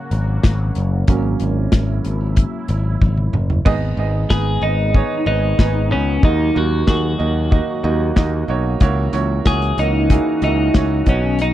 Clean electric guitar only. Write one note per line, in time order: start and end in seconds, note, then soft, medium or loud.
4.30 4.63 G#4 medium
4.63 5.26 D#4 medium
5.27 5.92 D#4 medium
5.92 6.22 C#4 medium
6.25 6.57 D#4 medium
6.58 6.87 F#4 medium
6.88 8.45 F#4 medium
9.47 9.79 G#4 medium
9.79 10.43 D#4 medium
10.44 11.09 D#4 medium
11.09 11.41 C#4 medium
11.42 11.54 D#4 medium